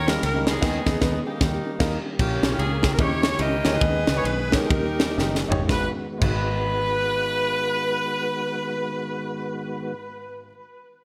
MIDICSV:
0, 0, Header, 1, 6, 480
1, 0, Start_track
1, 0, Key_signature, 5, "minor"
1, 0, Tempo, 393185
1, 762, Time_signature, 4, 2, 24, 8
1, 3645, Tempo, 414365
1, 4605, Tempo, 446097
1, 5565, Tempo, 493016
1, 6525, Tempo, 524017
1, 11425, End_track
2, 0, Start_track
2, 0, Title_t, "Saxophone section"
2, 0, Program_c, 0, 65
2, 0, Note_on_c, 0, 67, 81
2, 98, Note_on_c, 0, 70, 93
2, 271, Note_off_c, 0, 70, 0
2, 285, Note_on_c, 0, 70, 97
2, 559, Note_off_c, 0, 70, 0
2, 588, Note_on_c, 0, 59, 74
2, 589, Note_on_c, 0, 63, 70
2, 589, Note_on_c, 0, 68, 104
2, 718, Note_off_c, 0, 67, 0
2, 1178, Note_off_c, 0, 68, 0
2, 1491, Note_off_c, 0, 59, 0
2, 1492, Note_off_c, 0, 63, 0
2, 1542, Note_on_c, 0, 67, 77
2, 1548, Note_on_c, 0, 58, 58
2, 1549, Note_on_c, 0, 63, 62
2, 2155, Note_off_c, 0, 67, 0
2, 2450, Note_off_c, 0, 58, 0
2, 2450, Note_off_c, 0, 63, 0
2, 2684, Note_on_c, 0, 61, 76
2, 2685, Note_on_c, 0, 58, 72
2, 2692, Note_on_c, 0, 67, 100
2, 3131, Note_off_c, 0, 67, 0
2, 3168, Note_on_c, 0, 68, 98
2, 3441, Note_off_c, 0, 68, 0
2, 3474, Note_on_c, 0, 68, 79
2, 3553, Note_off_c, 0, 68, 0
2, 3563, Note_on_c, 0, 70, 92
2, 3600, Note_off_c, 0, 58, 0
2, 3600, Note_off_c, 0, 61, 0
2, 3650, Note_off_c, 0, 70, 0
2, 3655, Note_on_c, 0, 64, 71
2, 3658, Note_on_c, 0, 67, 67
2, 3658, Note_on_c, 0, 73, 103
2, 4116, Note_off_c, 0, 67, 0
2, 4124, Note_off_c, 0, 73, 0
2, 4130, Note_on_c, 0, 67, 89
2, 4130, Note_on_c, 0, 75, 122
2, 4131, Note_on_c, 0, 70, 79
2, 4497, Note_off_c, 0, 75, 0
2, 4511, Note_on_c, 0, 75, 115
2, 4518, Note_on_c, 0, 68, 89
2, 4519, Note_on_c, 0, 71, 82
2, 4564, Note_off_c, 0, 64, 0
2, 4577, Note_off_c, 0, 67, 0
2, 4578, Note_off_c, 0, 70, 0
2, 4950, Note_off_c, 0, 75, 0
2, 4985, Note_on_c, 0, 73, 101
2, 5066, Note_off_c, 0, 71, 0
2, 5075, Note_off_c, 0, 73, 0
2, 5079, Note_on_c, 0, 71, 98
2, 5376, Note_off_c, 0, 71, 0
2, 5384, Note_on_c, 0, 70, 95
2, 5389, Note_on_c, 0, 67, 65
2, 5390, Note_on_c, 0, 63, 74
2, 5429, Note_off_c, 0, 68, 0
2, 6299, Note_off_c, 0, 67, 0
2, 6300, Note_off_c, 0, 63, 0
2, 6336, Note_off_c, 0, 70, 0
2, 6531, Note_on_c, 0, 71, 93
2, 6693, Note_off_c, 0, 71, 0
2, 7016, Note_on_c, 0, 71, 101
2, 10909, Note_off_c, 0, 71, 0
2, 11425, End_track
3, 0, Start_track
3, 0, Title_t, "Grand piano"
3, 0, Program_c, 1, 0
3, 0, Note_on_c, 1, 51, 72
3, 91, Note_on_c, 1, 55, 84
3, 97, Note_on_c, 1, 58, 76
3, 98, Note_on_c, 1, 61, 83
3, 104, Note_on_c, 1, 63, 78
3, 110, Note_on_c, 1, 70, 89
3, 236, Note_off_c, 1, 55, 0
3, 240, Note_off_c, 1, 58, 0
3, 240, Note_off_c, 1, 61, 0
3, 243, Note_off_c, 1, 63, 0
3, 246, Note_off_c, 1, 70, 0
3, 419, Note_on_c, 1, 55, 73
3, 424, Note_on_c, 1, 58, 74
3, 430, Note_on_c, 1, 61, 75
3, 434, Note_on_c, 1, 63, 74
3, 442, Note_on_c, 1, 70, 83
3, 528, Note_off_c, 1, 51, 0
3, 621, Note_off_c, 1, 55, 0
3, 624, Note_off_c, 1, 58, 0
3, 627, Note_off_c, 1, 61, 0
3, 629, Note_off_c, 1, 63, 0
3, 633, Note_off_c, 1, 70, 0
3, 744, Note_on_c, 1, 59, 105
3, 756, Note_on_c, 1, 51, 108
3, 756, Note_on_c, 1, 63, 109
3, 764, Note_on_c, 1, 68, 110
3, 952, Note_off_c, 1, 59, 0
3, 959, Note_off_c, 1, 51, 0
3, 959, Note_off_c, 1, 63, 0
3, 964, Note_off_c, 1, 68, 0
3, 1046, Note_on_c, 1, 59, 109
3, 1057, Note_on_c, 1, 63, 110
3, 1068, Note_on_c, 1, 68, 111
3, 1176, Note_off_c, 1, 59, 0
3, 1182, Note_off_c, 1, 63, 0
3, 1188, Note_off_c, 1, 68, 0
3, 1225, Note_on_c, 1, 59, 104
3, 1238, Note_on_c, 1, 63, 114
3, 1249, Note_on_c, 1, 71, 99
3, 1432, Note_off_c, 1, 59, 0
3, 1440, Note_off_c, 1, 63, 0
3, 1446, Note_off_c, 1, 71, 0
3, 2186, Note_on_c, 1, 58, 100
3, 2197, Note_on_c, 1, 63, 98
3, 2207, Note_on_c, 1, 70, 112
3, 2391, Note_off_c, 1, 58, 0
3, 2398, Note_off_c, 1, 63, 0
3, 2404, Note_off_c, 1, 70, 0
3, 2670, Note_on_c, 1, 61, 78
3, 2677, Note_on_c, 1, 64, 67
3, 2678, Note_on_c, 1, 46, 69
3, 2689, Note_on_c, 1, 70, 81
3, 2900, Note_off_c, 1, 61, 0
3, 2903, Note_off_c, 1, 64, 0
3, 2909, Note_off_c, 1, 70, 0
3, 3056, Note_on_c, 1, 61, 81
3, 3070, Note_on_c, 1, 64, 69
3, 3079, Note_on_c, 1, 67, 85
3, 3232, Note_off_c, 1, 61, 0
3, 3239, Note_off_c, 1, 64, 0
3, 3244, Note_off_c, 1, 67, 0
3, 3408, Note_off_c, 1, 46, 0
3, 3445, Note_on_c, 1, 61, 82
3, 3454, Note_on_c, 1, 64, 70
3, 3468, Note_on_c, 1, 67, 92
3, 3546, Note_off_c, 1, 61, 0
3, 3551, Note_off_c, 1, 64, 0
3, 3558, Note_off_c, 1, 67, 0
3, 3633, Note_on_c, 1, 61, 80
3, 3639, Note_on_c, 1, 64, 75
3, 3643, Note_on_c, 1, 51, 61
3, 3644, Note_on_c, 1, 67, 64
3, 3649, Note_on_c, 1, 70, 70
3, 3654, Note_on_c, 1, 75, 83
3, 3933, Note_off_c, 1, 61, 0
3, 3936, Note_off_c, 1, 64, 0
3, 3938, Note_off_c, 1, 67, 0
3, 3941, Note_off_c, 1, 70, 0
3, 3943, Note_off_c, 1, 75, 0
3, 4106, Note_on_c, 1, 61, 78
3, 4107, Note_on_c, 1, 64, 80
3, 4115, Note_on_c, 1, 67, 70
3, 4118, Note_on_c, 1, 70, 75
3, 4124, Note_on_c, 1, 75, 88
3, 4264, Note_off_c, 1, 61, 0
3, 4264, Note_off_c, 1, 64, 0
3, 4268, Note_off_c, 1, 67, 0
3, 4269, Note_off_c, 1, 70, 0
3, 4272, Note_off_c, 1, 75, 0
3, 4369, Note_off_c, 1, 51, 0
3, 4402, Note_on_c, 1, 61, 89
3, 4409, Note_on_c, 1, 64, 75
3, 4412, Note_on_c, 1, 67, 78
3, 4419, Note_on_c, 1, 70, 77
3, 4422, Note_on_c, 1, 73, 100
3, 4505, Note_off_c, 1, 61, 0
3, 4509, Note_off_c, 1, 64, 0
3, 4510, Note_off_c, 1, 67, 0
3, 4514, Note_off_c, 1, 70, 0
3, 4515, Note_off_c, 1, 73, 0
3, 4598, Note_on_c, 1, 63, 79
3, 4606, Note_on_c, 1, 51, 70
3, 4606, Note_on_c, 1, 68, 65
3, 4617, Note_on_c, 1, 71, 80
3, 4821, Note_off_c, 1, 63, 0
3, 4824, Note_off_c, 1, 68, 0
3, 4830, Note_off_c, 1, 71, 0
3, 4970, Note_on_c, 1, 63, 84
3, 4980, Note_on_c, 1, 68, 69
3, 4988, Note_on_c, 1, 71, 95
3, 5147, Note_off_c, 1, 63, 0
3, 5152, Note_off_c, 1, 68, 0
3, 5156, Note_off_c, 1, 71, 0
3, 5331, Note_off_c, 1, 51, 0
3, 5358, Note_on_c, 1, 63, 78
3, 5366, Note_on_c, 1, 68, 75
3, 5376, Note_on_c, 1, 73, 87
3, 5463, Note_off_c, 1, 63, 0
3, 5466, Note_off_c, 1, 68, 0
3, 5471, Note_off_c, 1, 73, 0
3, 5552, Note_on_c, 1, 63, 72
3, 5561, Note_on_c, 1, 51, 66
3, 5561, Note_on_c, 1, 67, 69
3, 5571, Note_on_c, 1, 70, 83
3, 5847, Note_off_c, 1, 63, 0
3, 5851, Note_off_c, 1, 67, 0
3, 5856, Note_off_c, 1, 70, 0
3, 6020, Note_on_c, 1, 63, 90
3, 6028, Note_on_c, 1, 67, 89
3, 6038, Note_on_c, 1, 70, 99
3, 6178, Note_off_c, 1, 63, 0
3, 6181, Note_off_c, 1, 67, 0
3, 6186, Note_off_c, 1, 70, 0
3, 6291, Note_off_c, 1, 51, 0
3, 6321, Note_on_c, 1, 63, 92
3, 6331, Note_on_c, 1, 67, 91
3, 6341, Note_on_c, 1, 73, 110
3, 6424, Note_off_c, 1, 63, 0
3, 6429, Note_off_c, 1, 67, 0
3, 6434, Note_off_c, 1, 73, 0
3, 6489, Note_on_c, 1, 56, 84
3, 6509, Note_on_c, 1, 63, 75
3, 6520, Note_on_c, 1, 32, 89
3, 6533, Note_on_c, 1, 66, 75
3, 6554, Note_on_c, 1, 71, 89
3, 6671, Note_off_c, 1, 56, 0
3, 6681, Note_off_c, 1, 63, 0
3, 6687, Note_off_c, 1, 32, 0
3, 6694, Note_off_c, 1, 66, 0
3, 6705, Note_off_c, 1, 71, 0
3, 6970, Note_on_c, 1, 56, 83
3, 6992, Note_on_c, 1, 63, 73
3, 7003, Note_on_c, 1, 32, 86
3, 7011, Note_on_c, 1, 66, 77
3, 7035, Note_on_c, 1, 71, 93
3, 10864, Note_off_c, 1, 56, 0
3, 10886, Note_off_c, 1, 63, 0
3, 10896, Note_off_c, 1, 32, 0
3, 10905, Note_off_c, 1, 66, 0
3, 10928, Note_off_c, 1, 71, 0
3, 11425, End_track
4, 0, Start_track
4, 0, Title_t, "Tonewheel organ"
4, 0, Program_c, 2, 16
4, 0, Note_on_c, 2, 51, 69
4, 0, Note_on_c, 2, 58, 70
4, 0, Note_on_c, 2, 61, 74
4, 0, Note_on_c, 2, 67, 78
4, 713, Note_off_c, 2, 61, 0
4, 732, Note_off_c, 2, 58, 0
4, 747, Note_off_c, 2, 67, 0
4, 764, Note_on_c, 2, 56, 68
4, 771, Note_on_c, 2, 68, 80
4, 773, Note_on_c, 2, 59, 69
4, 1710, Note_off_c, 2, 56, 0
4, 1714, Note_off_c, 2, 68, 0
4, 1715, Note_off_c, 2, 59, 0
4, 1730, Note_on_c, 2, 55, 62
4, 1733, Note_on_c, 2, 67, 83
4, 1735, Note_on_c, 2, 58, 69
4, 2642, Note_off_c, 2, 51, 0
4, 2669, Note_off_c, 2, 58, 0
4, 2672, Note_off_c, 2, 55, 0
4, 2673, Note_off_c, 2, 67, 0
4, 2678, Note_on_c, 2, 61, 67
4, 2680, Note_on_c, 2, 70, 78
4, 2683, Note_on_c, 2, 58, 66
4, 2687, Note_on_c, 2, 49, 72
4, 3630, Note_on_c, 2, 67, 77
4, 3637, Note_off_c, 2, 70, 0
4, 3637, Note_on_c, 2, 51, 67
4, 3638, Note_off_c, 2, 58, 0
4, 4587, Note_off_c, 2, 61, 0
4, 4588, Note_off_c, 2, 67, 0
4, 4591, Note_off_c, 2, 49, 0
4, 4591, Note_off_c, 2, 51, 0
4, 4603, Note_on_c, 2, 59, 66
4, 4605, Note_on_c, 2, 51, 74
4, 4605, Note_on_c, 2, 56, 65
4, 4607, Note_on_c, 2, 68, 90
4, 5553, Note_off_c, 2, 51, 0
4, 5554, Note_off_c, 2, 56, 0
4, 5554, Note_off_c, 2, 59, 0
4, 5555, Note_off_c, 2, 68, 0
4, 5566, Note_on_c, 2, 51, 71
4, 5566, Note_on_c, 2, 58, 65
4, 5567, Note_on_c, 2, 55, 66
4, 5568, Note_on_c, 2, 67, 84
4, 6514, Note_off_c, 2, 51, 0
4, 6516, Note_off_c, 2, 55, 0
4, 6516, Note_off_c, 2, 58, 0
4, 6517, Note_off_c, 2, 67, 0
4, 6517, Note_on_c, 2, 56, 73
4, 6518, Note_on_c, 2, 66, 82
4, 6522, Note_on_c, 2, 59, 67
4, 6526, Note_on_c, 2, 51, 73
4, 10411, Note_off_c, 2, 56, 0
4, 10411, Note_off_c, 2, 66, 0
4, 10415, Note_off_c, 2, 59, 0
4, 10419, Note_off_c, 2, 51, 0
4, 11425, End_track
5, 0, Start_track
5, 0, Title_t, "Fingered electric bass"
5, 0, Program_c, 3, 33
5, 0, Note_on_c, 3, 39, 102
5, 212, Note_off_c, 3, 39, 0
5, 282, Note_on_c, 3, 37, 109
5, 689, Note_off_c, 3, 37, 0
5, 758, Note_on_c, 3, 39, 103
5, 960, Note_off_c, 3, 39, 0
5, 1052, Note_on_c, 3, 39, 102
5, 1179, Note_off_c, 3, 39, 0
5, 1241, Note_on_c, 3, 39, 107
5, 1441, Note_off_c, 3, 39, 0
5, 1720, Note_on_c, 3, 39, 106
5, 1920, Note_off_c, 3, 39, 0
5, 2199, Note_on_c, 3, 39, 114
5, 2399, Note_off_c, 3, 39, 0
5, 2675, Note_on_c, 3, 34, 92
5, 2927, Note_off_c, 3, 34, 0
5, 2963, Note_on_c, 3, 35, 84
5, 3124, Note_off_c, 3, 35, 0
5, 3157, Note_on_c, 3, 37, 90
5, 3571, Note_off_c, 3, 37, 0
5, 3644, Note_on_c, 3, 39, 112
5, 4046, Note_off_c, 3, 39, 0
5, 4115, Note_on_c, 3, 37, 109
5, 4369, Note_off_c, 3, 37, 0
5, 4413, Note_on_c, 3, 38, 102
5, 4575, Note_off_c, 3, 38, 0
5, 4603, Note_on_c, 3, 39, 94
5, 4848, Note_off_c, 3, 39, 0
5, 4888, Note_on_c, 3, 37, 93
5, 5045, Note_off_c, 3, 37, 0
5, 5066, Note_on_c, 3, 35, 97
5, 5486, Note_off_c, 3, 35, 0
5, 5560, Note_on_c, 3, 39, 95
5, 6025, Note_on_c, 3, 30, 102
5, 6039, Note_off_c, 3, 39, 0
5, 6283, Note_off_c, 3, 30, 0
5, 6330, Note_on_c, 3, 31, 98
5, 6495, Note_off_c, 3, 31, 0
5, 6524, Note_on_c, 3, 32, 100
5, 6689, Note_off_c, 3, 32, 0
5, 7003, Note_on_c, 3, 32, 90
5, 10897, Note_off_c, 3, 32, 0
5, 11425, End_track
6, 0, Start_track
6, 0, Title_t, "Drums"
6, 95, Note_on_c, 9, 51, 65
6, 98, Note_on_c, 9, 38, 115
6, 218, Note_off_c, 9, 51, 0
6, 220, Note_off_c, 9, 38, 0
6, 281, Note_on_c, 9, 51, 102
6, 403, Note_off_c, 9, 51, 0
6, 572, Note_on_c, 9, 38, 127
6, 577, Note_on_c, 9, 51, 69
6, 694, Note_off_c, 9, 38, 0
6, 699, Note_off_c, 9, 51, 0
6, 763, Note_on_c, 9, 36, 110
6, 763, Note_on_c, 9, 38, 101
6, 763, Note_on_c, 9, 49, 86
6, 885, Note_off_c, 9, 36, 0
6, 885, Note_off_c, 9, 38, 0
6, 885, Note_off_c, 9, 49, 0
6, 1054, Note_on_c, 9, 38, 110
6, 1057, Note_on_c, 9, 36, 112
6, 1176, Note_off_c, 9, 38, 0
6, 1179, Note_off_c, 9, 36, 0
6, 1239, Note_on_c, 9, 38, 121
6, 1242, Note_on_c, 9, 36, 113
6, 1361, Note_off_c, 9, 38, 0
6, 1364, Note_off_c, 9, 36, 0
6, 1718, Note_on_c, 9, 38, 108
6, 1721, Note_on_c, 9, 36, 114
6, 1840, Note_off_c, 9, 38, 0
6, 1843, Note_off_c, 9, 36, 0
6, 2200, Note_on_c, 9, 36, 127
6, 2200, Note_on_c, 9, 38, 120
6, 2200, Note_on_c, 9, 49, 91
6, 2322, Note_off_c, 9, 38, 0
6, 2322, Note_off_c, 9, 49, 0
6, 2323, Note_off_c, 9, 36, 0
6, 2678, Note_on_c, 9, 36, 109
6, 2678, Note_on_c, 9, 49, 98
6, 2800, Note_off_c, 9, 36, 0
6, 2800, Note_off_c, 9, 49, 0
6, 2969, Note_on_c, 9, 38, 115
6, 2969, Note_on_c, 9, 51, 58
6, 3091, Note_off_c, 9, 38, 0
6, 3092, Note_off_c, 9, 51, 0
6, 3165, Note_on_c, 9, 51, 74
6, 3287, Note_off_c, 9, 51, 0
6, 3454, Note_on_c, 9, 38, 107
6, 3463, Note_on_c, 9, 51, 67
6, 3466, Note_on_c, 9, 36, 97
6, 3576, Note_off_c, 9, 38, 0
6, 3585, Note_off_c, 9, 51, 0
6, 3589, Note_off_c, 9, 36, 0
6, 3646, Note_on_c, 9, 36, 120
6, 3646, Note_on_c, 9, 51, 70
6, 3762, Note_off_c, 9, 36, 0
6, 3762, Note_off_c, 9, 51, 0
6, 3930, Note_on_c, 9, 51, 64
6, 3933, Note_on_c, 9, 38, 112
6, 4046, Note_off_c, 9, 51, 0
6, 4049, Note_off_c, 9, 38, 0
6, 4112, Note_on_c, 9, 51, 93
6, 4228, Note_off_c, 9, 51, 0
6, 4411, Note_on_c, 9, 38, 127
6, 4416, Note_on_c, 9, 51, 68
6, 4527, Note_off_c, 9, 38, 0
6, 4532, Note_off_c, 9, 51, 0
6, 4601, Note_on_c, 9, 51, 76
6, 4604, Note_on_c, 9, 36, 116
6, 4709, Note_off_c, 9, 51, 0
6, 4712, Note_off_c, 9, 36, 0
6, 4884, Note_on_c, 9, 38, 121
6, 4884, Note_on_c, 9, 51, 54
6, 4992, Note_off_c, 9, 38, 0
6, 4992, Note_off_c, 9, 51, 0
6, 5075, Note_on_c, 9, 51, 81
6, 5183, Note_off_c, 9, 51, 0
6, 5368, Note_on_c, 9, 38, 120
6, 5376, Note_on_c, 9, 51, 67
6, 5379, Note_on_c, 9, 36, 97
6, 5476, Note_off_c, 9, 38, 0
6, 5483, Note_off_c, 9, 51, 0
6, 5487, Note_off_c, 9, 36, 0
6, 5563, Note_on_c, 9, 36, 127
6, 5564, Note_on_c, 9, 51, 72
6, 5661, Note_off_c, 9, 36, 0
6, 5662, Note_off_c, 9, 51, 0
6, 5847, Note_on_c, 9, 51, 65
6, 5849, Note_on_c, 9, 38, 127
6, 5944, Note_off_c, 9, 51, 0
6, 5946, Note_off_c, 9, 38, 0
6, 6031, Note_on_c, 9, 38, 68
6, 6128, Note_off_c, 9, 38, 0
6, 6192, Note_on_c, 9, 38, 77
6, 6289, Note_off_c, 9, 38, 0
6, 6355, Note_on_c, 9, 43, 123
6, 6452, Note_off_c, 9, 43, 0
6, 6525, Note_on_c, 9, 36, 97
6, 6525, Note_on_c, 9, 38, 81
6, 6617, Note_off_c, 9, 36, 0
6, 6617, Note_off_c, 9, 38, 0
6, 7004, Note_on_c, 9, 49, 90
6, 7005, Note_on_c, 9, 36, 105
6, 7096, Note_off_c, 9, 36, 0
6, 7096, Note_off_c, 9, 49, 0
6, 11425, End_track
0, 0, End_of_file